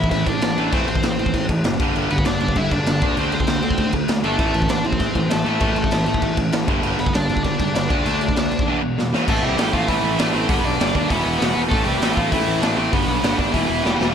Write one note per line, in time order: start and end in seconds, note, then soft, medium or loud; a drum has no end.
0.04 kick loud
0.10 0.23 A1 medium
0.10 0.25 A2 medium
0.10 0.25 E3 medium
0.10 0.26 E4 medium
0.10 0.27 E5 loud
0.10 kick medium
0.10 crash medium
0.27 0.38 A1 medium
0.27 0.41 A2 medium
0.27 0.41 E3 medium
0.27 0.70 D4 medium
0.27 0.74 D5 loud
0.27 kick loud
0.27 crash medium
0.41 0.54 A1 medium
0.41 0.56 A2 medium
0.41 0.56 E3 medium
0.41 snare loud
0.41 crash medium
0.57 0.69 A1 medium
0.57 0.71 A2 medium
0.57 0.72 E3 medium
0.57 0.72 A3 medium
0.57 crash medium
0.72 0.96 A1 medium
0.72 0.87 A2 medium
0.72 0.87 E3 medium
0.72 0.88 A3 medium
0.72 0.87 C4 medium
0.72 0.87 C5 medium
0.72 kick loud
0.72 crash medium
0.88 1.02 A2 medium
0.88 1.02 E3 medium
0.88 1.46 C4 medium
0.88 1.46 C5 medium
0.88 crash medium
0.95 kick medium
1.03 1.15 A1 medium
1.03 1.17 A2 medium
1.03 1.18 E3 loud
1.03 snare loud
1.03 crash medium
1.19 1.30 A1 medium
1.19 1.33 A2 medium
1.19 1.33 E3 medium
1.19 crash medium
1.26 kick medium
1.34 1.46 A1 loud
1.34 1.48 A2 medium
1.34 1.48 E3 medium
1.34 kick medium
1.34 crash medium
1.49 1.61 A1 medium
1.49 1.63 A2 medium
1.49 1.64 E3 medium
1.49 kick medium
1.49 crash medium
1.64 1.76 F#1 loud
1.64 1.79 A2 medium
1.64 1.79 E3 medium
1.64 snare loud
1.64 crash medium
1.80 1.91 G1 medium
1.80 1.94 G2 medium
1.80 1.95 D3 medium
1.80 1.95 G3 medium
1.80 kick loud
1.80 crash medium
1.95 2.07 G1 loud
1.95 2.09 G2 medium
1.95 2.10 D3 medium
1.95 2.10 G3 loud
1.95 crash medium
2.10 2.22 G1 loud
2.10 2.24 G2 medium
2.10 2.25 D3 medium
2.10 2.25 B3 medium
2.10 2.25 B4 medium
2.10 crash medium
2.18 kick loud
2.25 2.38 G1 loud
2.25 2.40 G2 medium
2.25 2.40 D3 loud
2.25 2.40 D4 medium
2.25 2.40 D5 medium
2.25 snare loud
2.25 crash medium
2.41 2.53 G1 medium
2.41 2.55 G2 medium
2.41 2.55 D3 medium
2.41 2.56 D4 medium
2.41 2.56 D5 medium
2.41 crash medium
2.48 kick medium
2.55 2.68 G1 medium
2.55 2.70 G2 medium
2.55 2.70 D3 medium
2.55 2.71 E4 medium
2.55 2.72 E5 loud
2.55 kick medium
2.55 crash medium
2.71 2.83 G1 medium
2.71 2.86 G2 medium
2.71 2.86 D3 medium
2.71 3.15 D4 medium
2.71 3.19 D5 loud
2.71 kick medium
2.71 crash medium
2.86 2.99 G1 medium
2.86 3.01 G2 medium
2.86 3.01 D3 medium
2.86 snare loud
2.86 crash medium
3.01 3.14 D2 medium
3.01 3.17 D3 medium
3.01 3.17 A3 medium
3.01 3.17 D4 loud
3.01 kick loud
3.01 crash medium
3.17 3.40 D2 medium
3.17 3.32 D3 medium
3.17 3.32 A3 medium
3.17 3.33 C4 medium
3.17 3.33 D4 loud
3.17 3.33 C5 loud
3.17 crash medium
3.32 3.46 D3 medium
3.32 3.47 A3 medium
3.32 3.91 C4 medium
3.32 3.91 C5 medium
3.32 crash medium
3.40 kick medium
3.47 3.60 D2 medium
3.47 3.62 D3 medium
3.47 3.62 A3 medium
3.47 snare loud
3.47 crash medium
3.62 3.75 D2 medium
3.62 3.77 D3 medium
3.62 3.77 A3 medium
3.62 crash medium
3.71 kick loud
3.77 3.90 D2 medium
3.77 3.92 D3 medium
3.77 3.92 A3 medium
3.77 kick loud
3.77 crash medium
3.92 4.05 D2 medium
3.92 4.07 D3 medium
3.92 4.08 A3 medium
3.92 kick medium
3.92 crash medium
4.08 4.21 D2 medium
4.08 4.22 D3 medium
4.08 4.22 A3 medium
4.08 snare loud
4.08 crash medium
4.23 4.36 G1 medium
4.23 4.38 D3 medium
4.23 4.38 A3 medium
4.23 4.68 A3 medium
4.23 4.39 D4 medium
4.23 4.72 A4 medium
4.23 crash medium
4.38 4.51 A1 medium
4.38 4.53 A2 medium
4.38 4.53 E3 medium
4.38 4.54 A3 loud
4.38 kick loud
4.38 crash medium
4.54 4.67 A1 medium
4.54 4.67 A2 medium
4.54 4.67 E3 medium
4.54 crash medium
4.62 kick medium
4.68 4.82 A1 medium
4.68 4.83 A2 medium
4.68 4.83 E3 medium
4.68 4.85 D4 medium
4.68 4.86 D5 medium
4.68 snare loud
4.68 crash medium
4.84 4.97 A1 medium
4.84 4.99 A2 medium
4.84 4.99 E3 medium
4.84 5.29 C4 medium
4.84 5.33 C5 medium
4.84 crash medium
4.93 kick medium
5.00 5.12 A1 loud
5.00 5.14 A2 medium
5.00 5.15 E3 medium
5.00 kick medium
5.00 crash medium
5.15 5.27 A1 loud
5.15 5.29 A2 medium
5.15 5.30 E3 medium
5.15 kick medium
5.15 crash medium
5.30 5.43 A1 medium
5.30 5.44 A2 medium
5.30 5.44 E3 medium
5.30 5.46 A3 medium
5.30 5.46 A4 medium
5.30 snare loud
5.30 crash medium
5.45 5.59 A1 medium
5.45 5.59 A2 medium
5.45 5.60 E3 medium
5.45 5.60 A3 loud
5.45 6.35 A3 medium
5.45 6.35 A4 medium
5.45 crash medium
5.60 5.84 A1 medium
5.60 5.75 A2 medium
5.60 5.75 E3 medium
5.60 5.76 A3 medium
5.60 kick loud
5.60 crash medium
5.76 5.90 A2 medium
5.76 5.91 E3 medium
5.76 crash medium
5.84 kick medium
5.91 6.04 A1 medium
5.91 6.05 A2 medium
5.91 6.06 E3 medium
5.91 snare loud
5.91 crash medium
6.06 6.19 A1 loud
6.06 6.21 A2 medium
6.06 6.21 E3 medium
6.06 crash medium
6.14 kick medium
6.22 6.34 A1 loud
6.22 6.36 A2 medium
6.22 6.36 E3 medium
6.22 kick loud
6.22 crash medium
6.37 6.49 A1 medium
6.37 6.51 A2 medium
6.37 6.51 E3 medium
6.37 kick loud
6.37 crash medium
6.52 6.65 A1 medium
6.52 6.67 A2 medium
6.52 6.67 E3 medium
6.52 snare loud
6.52 crash medium
6.68 6.80 G1 medium
6.68 6.81 G2 medium
6.68 6.81 D3 medium
6.68 6.82 G3 medium
6.68 kick loud
6.68 crash medium
6.82 6.96 G1 medium
6.82 6.97 G2 medium
6.82 6.97 D3 medium
6.82 6.98 G3 loud
6.82 crash medium
6.98 7.11 G1 medium
6.98 7.12 G2 medium
6.98 7.13 D3 medium
6.98 7.14 B3 medium
6.98 7.13 B4 medium
6.98 crash medium
7.06 kick medium
7.13 7.26 G1 medium
7.13 7.28 G2 medium
7.13 7.28 D3 medium
7.13 7.43 D4 medium
7.13 7.42 D5 medium
7.13 snare loud
7.13 crash medium
7.29 7.41 G1 loud
7.29 7.44 G2 medium
7.29 7.44 D3 medium
7.29 crash medium
7.37 kick medium
7.43 7.56 G1 loud
7.43 7.59 G2 medium
7.43 7.58 D3 medium
7.43 7.74 D4 medium
7.43 7.72 D5 loud
7.43 kick medium
7.43 crash medium
7.60 7.72 G1 medium
7.60 7.73 G2 medium
7.60 7.74 D3 loud
7.60 kick medium
7.60 crash medium
7.75 7.87 G1 loud
7.75 7.89 G2 medium
7.75 7.88 D3 loud
7.75 7.90 D4 medium
7.75 7.88 D5 loud
7.75 snare loud
7.75 crash medium
7.89 8.02 D2 medium
7.89 8.04 D3 medium
7.89 8.04 A3 medium
7.89 8.05 D4 medium
7.89 8.79 D4 medium
7.89 8.77 D5 loud
7.89 kick loud
7.89 crash medium
8.05 8.29 D2 medium
8.05 8.19 D3 loud
8.05 8.19 A3 loud
8.05 8.21 D4 medium
8.05 crash medium
8.20 8.34 D3 medium
8.20 8.35 A3 medium
8.20 crash medium
8.29 kick medium
8.35 8.48 D2 medium
8.35 8.49 D3 medium
8.35 8.50 A3 medium
8.35 snare loud
8.35 crash medium
8.51 8.63 D2 medium
8.51 8.65 D3 medium
8.51 8.65 A3 medium
8.51 crash medium
8.59 kick medium
8.66 8.80 E2 medium
8.66 8.81 B2 medium
8.66 8.82 E3 loud
8.82 8.96 E2 medium
8.82 8.96 B2 medium
8.98 9.12 E2 medium
8.98 9.12 B2 medium
8.98 snare medium
9.13 9.27 E2 medium
9.13 9.27 B2 medium
9.13 9.27 E3 medium
9.13 snare loud
9.28 9.39 A1 loud
9.28 9.56 A2 loud
9.28 9.57 E3 loud
9.28 9.58 A3 loud
9.28 9.43 A3 medium
9.28 9.43 A4 medium
9.28 kick loud
9.28 crash loud
9.44 9.54 C2 medium
9.44 9.58 G3 medium
9.44 9.57 G4 loud
9.58 9.69 A1 medium
9.58 9.73 A2 medium
9.58 9.72 E3 loud
9.58 9.73 G3 medium
9.58 9.72 A3 loud
9.58 9.73 G4 loud
9.58 snare loud
9.58 open hi-hat medium
9.73 9.84 A1 medium
9.73 9.87 A2 medium
9.73 9.87 E3 medium
9.73 9.88 F3 medium
9.73 9.88 A3 medium
9.73 9.88 F4 loud
9.73 kick medium
9.88 9.99 A1 loud
9.88 10.18 A2 loud
9.88 10.19 E3 loud
9.88 10.17 E3 medium
9.88 10.19 A3 loud
9.88 10.17 E4 loud
9.88 kick medium
9.88 open hi-hat medium
10.04 10.14 A1 medium
10.18 10.30 A1 loud
10.18 10.35 A2 medium
10.18 10.34 E3 medium
10.18 10.33 A3 medium
10.18 10.34 D4 medium
10.18 10.34 D5 medium
10.18 snare loud
10.18 open hi-hat medium
10.33 10.45 A1 medium
10.33 10.50 A2 medium
10.33 10.49 E3 medium
10.33 10.49 A3 medium
10.33 10.50 C4 loud
10.33 10.49 C5 medium
10.48 10.60 G1 loud
10.48 10.78 G2 medium
10.48 10.79 D3 loud
10.48 10.80 G3 loud
10.48 10.65 B3 loud
10.48 10.64 B4 medium
10.48 kick loud
10.48 open hi-hat medium
10.64 10.76 B1 medium
10.64 10.93 D4 medium
10.64 10.94 D5 medium
10.79 10.91 G1 loud
10.79 10.95 G2 loud
10.79 10.95 D3 loud
10.79 10.95 G3 loud
10.79 snare loud
10.79 open hi-hat medium
10.94 11.06 D#2 loud
10.94 11.09 G2 medium
10.94 11.10 D3 medium
10.94 11.10 G3 loud
10.94 11.11 D4 loud
10.94 11.10 D5 medium
10.94 kick medium
11.08 11.21 E1 loud
11.08 11.39 E2 medium
11.08 11.40 B2 loud
11.08 11.41 E3 loud
11.08 11.22 B3 loud
11.08 11.24 B4 medium
11.08 kick loud
11.08 open hi-hat medium
11.23 11.37 E1 loud
11.23 11.37 B3 loud
11.23 11.39 B4 medium
11.38 11.52 E1 medium
11.38 11.55 E2 medium
11.38 11.54 B2 medium
11.38 11.53 E3 loud
11.38 11.61 B3 loud
11.38 11.62 B4 medium
11.38 snare loud
11.38 open hi-hat medium
11.55 11.67 E1 medium
11.55 11.70 E2 medium
11.55 11.70 B2 medium
11.55 11.70 E3 loud
11.69 11.82 A1 loud
11.69 12.01 A2 loud
11.69 12.01 E3 loud
11.69 11.85 A3 medium
11.69 12.02 A3 loud
11.69 11.84 A4 loud
11.69 kick loud
11.69 open hi-hat medium
11.84 11.97 C2 loud
11.84 11.99 G3 medium
11.84 11.97 G4 medium
11.98 12.12 A1 loud
11.98 12.17 A2 loud
11.98 12.15 G3 medium
11.98 12.14 G4 medium
11.98 open hi-hat medium
12.03 12.16 E3 loud
12.03 12.15 A3 loud
12.03 snare loud
12.15 12.28 A1 medium
12.15 12.31 A2 medium
12.15 12.32 E3 loud
12.15 12.32 F3 medium
12.15 12.32 A3 medium
12.15 12.31 F4 loud
12.15 kick medium
12.31 12.43 A1 medium
12.31 12.61 A2 loud
12.31 12.62 E3 loud
12.31 12.61 E3 medium
12.31 12.63 A3 loud
12.31 12.60 E4 loud
12.31 kick medium
12.31 open hi-hat medium
12.47 12.58 A1 loud
12.60 12.73 A1 loud
12.60 12.78 A2 medium
12.60 12.77 E3 loud
12.60 12.76 A3 loud
12.60 12.77 D4 loud
12.60 12.77 D5 medium
12.60 snare loud
12.60 open hi-hat medium
12.75 12.88 A1 medium
12.75 12.93 A2 medium
12.75 12.92 E3 medium
12.75 12.92 A3 medium
12.75 12.92 C4 loud
12.75 12.92 C5 medium
12.91 13.04 G1 medium
12.91 13.22 G2 loud
12.91 13.22 D3 loud
12.91 13.23 G3 loud
12.91 13.06 B3 loud
12.91 13.07 B4 medium
12.91 kick loud
12.91 open hi-hat medium
13.07 13.19 B1 medium
13.07 13.39 B3 medium
13.07 13.37 B4 medium
13.23 13.34 G1 loud
13.23 13.39 G2 loud
13.23 13.38 D3 medium
13.23 13.38 G3 loud
13.23 snare loud
13.23 open hi-hat medium
13.36 13.49 G1 medium
13.36 13.53 G2 medium
13.36 13.54 D3 medium
13.36 13.53 G3 medium
13.36 13.51 D4 medium
13.36 13.53 D5 medium
13.36 kick medium
13.51 13.65 E1 loud
13.51 13.82 E2 medium
13.51 13.82 B2 loud
13.51 13.68 E3 medium
13.51 13.83 E3 loud
13.51 13.67 E4 loud
13.51 kick medium
13.51 open hi-hat medium
13.68 13.80 E1 loud
13.68 13.84 E3 medium
13.68 13.84 E4 loud
13.83 13.95 E1 medium
13.83 13.99 E2 medium
13.83 13.98 B2 medium
13.83 13.98 E3 medium
13.83 14.06 G3 medium
13.83 14.05 G4 loud
13.83 snare medium
13.99 14.11 E1 medium
13.99 14.14 E2 medium
13.99 14.12 B2 medium
13.99 14.12 E3 medium
13.99 snare loud